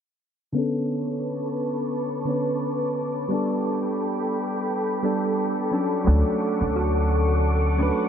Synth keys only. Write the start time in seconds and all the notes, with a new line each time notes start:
0.53 D3 B3 C#4
0.58 A4
2.25 D3 B3 C#4
2.30 B4
3.28 G3 B3 D4
3.34 A4
5.03 G3 B3 D4 A4
5.71 F#3 C#4 D4 A4
6.04 F#3 C#4 D4
6.10 A4
7.77 F#3 C#4 D4
7.82 B4